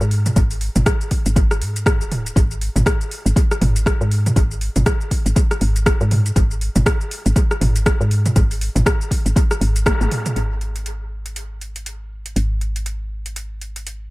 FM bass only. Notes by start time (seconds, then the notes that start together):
0.01 G#2
0.36 G#1
0.76 G#1
1.26 G#1
1.61 G#2
2.01 D#1
2.36 G#1
2.76 G#1
3.26 G#1
3.61 G#1
4.01 G#2
4.36 G#1
4.76 G#1
5.26 G#1
5.61 G#1
6.01 G#2
6.36 G#1
6.76 G#1
7.26 G#1
7.61 G#1
8.00 G#2
8.36 G#1
8.76 G#1
9.26 G#1
9.61 G#1
10.01 G#1
10.36 G#1
12.36 G#1